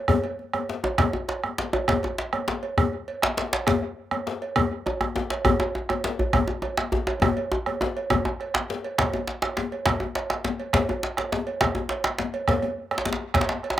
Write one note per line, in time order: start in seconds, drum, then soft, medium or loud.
0.08 bombo rim medium
0.08 bombo low medium
0.08 cowbell medium
0.08 djembe tone medium
0.08 djembe bass medium
0.24 cowbell soft
0.24 djembe slap soft
0.39 djembe slap soft
0.53 bombo rim medium
0.53 cowbell soft
0.53 djembe tone medium
0.69 djembe slap medium
0.84 bombo rim soft
0.84 cowbell soft
0.84 djembe slap soft
0.84 djembe tone loud
0.98 bombo rim loud
0.98 bombo low loud
0.98 cowbell soft
0.98 djembe slap medium
0.98 djembe tone medium
0.98 djembe bass medium
1.13 djembe tone medium
1.28 bombo rim soft
1.28 cowbell soft
1.28 djembe slap medium
1.44 bombo rim medium
1.44 djembe tone medium
1.58 djembe slap medium
1.73 cowbell soft
1.73 djembe slap soft
1.73 djembe tone loud
1.88 bombo rim medium
1.88 bombo low medium
1.88 cowbell medium
1.88 djembe slap medium
1.88 djembe tone medium
1.88 djembe bass medium
2.03 cowbell soft
2.03 djembe tone medium
2.18 djembe slap medium
2.33 bombo rim medium
2.33 cowbell soft
2.33 djembe slap soft
2.33 djembe tone soft
2.48 bombo rim soft
2.48 djembe slap medium
2.63 cowbell soft
2.78 bombo rim loud
2.78 bombo low loud
2.78 cowbell soft
2.78 djembe tone medium
2.78 djembe bass medium
2.93 djembe slap soft
3.08 cowbell soft
3.08 djembe slap soft
3.22 bombo rim medium
3.22 djembe slap loud
3.22 djembe tone medium
3.37 djembe slap medium
3.53 cowbell soft
3.53 djembe slap loud
3.67 bombo rim medium
3.67 bombo low medium
3.67 cowbell medium
3.67 djembe slap medium
3.67 djembe tone medium
3.67 djembe bass medium
4.11 bombo rim medium
4.11 cowbell soft
4.11 djembe slap soft
4.11 djembe tone medium
4.27 bombo rim soft
4.27 djembe slap medium
4.42 cowbell soft
4.56 bombo rim loud
4.56 bombo low loud
4.56 cowbell soft
4.56 djembe tone medium
4.56 djembe bass medium
4.71 djembe slap soft
4.86 cowbell soft
4.86 djembe slap soft
4.86 djembe tone medium
5.01 bombo rim medium
5.01 djembe tone medium
5.16 djembe slap medium
5.16 djembe tone medium
5.30 cowbell soft
5.30 djembe slap medium
5.45 bombo rim loud
5.45 bombo low medium
5.45 cowbell medium
5.45 djembe tone medium
5.45 djembe bass medium
5.60 cowbell soft
5.60 djembe tone loud
5.75 djembe tone medium
5.89 bombo rim medium
5.89 cowbell soft
5.89 djembe slap soft
5.89 djembe tone medium
6.04 bombo rim soft
6.04 djembe slap medium
6.19 cowbell soft
6.19 djembe bass medium
6.33 bombo rim medium
6.33 bombo low loud
6.33 cowbell soft
6.33 djembe tone loud
6.33 djembe tone medium
6.33 djembe bass medium
6.48 djembe slap soft
6.48 djembe tone medium
6.62 cowbell soft
6.62 djembe slap soft
6.62 djembe tone medium
6.77 bombo rim medium
6.77 djembe slap medium
6.77 djembe tone soft
6.92 djembe slap medium
6.92 djembe bass medium
7.07 cowbell medium
7.07 djembe tone loud
7.22 bombo rim medium
7.22 bombo low medium
7.22 cowbell medium
7.22 djembe tone medium
7.22 djembe tone loud
7.22 djembe bass medium
7.37 cowbell soft
7.37 djembe slap soft
7.52 djembe tone loud
7.66 bombo rim medium
7.66 cowbell soft
7.66 djembe tone medium
7.81 bombo rim soft
7.81 djembe slap medium
7.81 djembe tone medium
7.97 cowbell soft
8.10 bombo rim medium
8.10 bombo low medium
8.10 cowbell medium
8.10 djembe slap soft
8.10 djembe tone loud
8.10 djembe tone medium
8.10 djembe bass medium
8.25 bombo rim soft
8.25 djembe tone medium
8.40 bombo rim soft
8.40 cowbell soft
8.54 bombo rim medium
8.54 djembe slap medium
8.54 djembe tone medium
8.70 djembe slap medium
8.84 cowbell medium
8.98 bombo rim medium
8.98 bombo low loud
8.98 cowbell medium
8.98 djembe slap medium
8.98 djembe bass medium
9.13 cowbell soft
9.13 djembe slap soft
9.13 djembe tone medium
9.27 djembe slap medium
9.42 bombo rim medium
9.42 cowbell soft
9.42 djembe slap medium
9.42 djembe slap soft
9.57 djembe slap medium
9.57 djembe tone medium
9.72 cowbell soft
9.86 bombo rim medium
9.86 bombo low medium
9.86 cowbell soft
9.86 djembe slap medium
9.86 djembe bass medium
10.00 djembe tone medium
10.00 djembe tone soft
10.15 cowbell soft
10.15 djembe slap medium
10.30 bombo rim medium
10.30 djembe slap soft
10.30 djembe slap medium
10.45 djembe slap medium
10.45 djembe slap soft
10.45 djembe tone medium
10.60 cowbell soft
10.73 bombo rim medium
10.73 bombo low medium
10.73 cowbell medium
10.73 djembe slap medium
10.73 djembe bass medium
10.89 cowbell soft
10.89 djembe slap soft
10.89 djembe tone medium
11.03 djembe slap medium
11.17 bombo rim medium
11.17 cowbell soft
11.17 djembe slap medium
11.17 djembe slap soft
11.32 djembe slap medium
11.32 djembe tone medium
11.47 cowbell soft
11.61 bombo rim medium
11.61 bombo low medium
11.61 cowbell soft
11.61 djembe slap medium
11.61 djembe bass medium
11.75 djembe tone medium
11.89 bombo rim soft
11.89 cowbell soft
11.89 djembe slap medium
12.04 bombo rim medium
12.04 djembe slap medium
12.04 djembe slap soft
12.18 djembe slap medium
12.18 djembe slap soft
12.18 djembe tone medium
12.34 cowbell soft
12.48 bombo rim medium
12.48 bombo low medium
12.48 cowbell medium
12.48 djembe slap medium
12.48 djembe bass medium
12.62 cowbell soft
12.62 djembe slap soft
12.62 djembe tone medium
12.91 bombo rim medium
12.91 cowbell soft
12.91 djembe slap medium
12.98 djembe slap medium
13.05 djembe slap medium
13.05 djembe tone medium
13.13 djembe slap medium
13.34 bombo rim medium
13.34 bombo low medium
13.34 cowbell soft
13.34 djembe slap medium
13.34 djembe bass medium
13.41 djembe slap medium
13.49 djembe slap medium
13.49 djembe tone soft
13.63 bombo rim soft
13.63 cowbell medium
13.70 djembe slap medium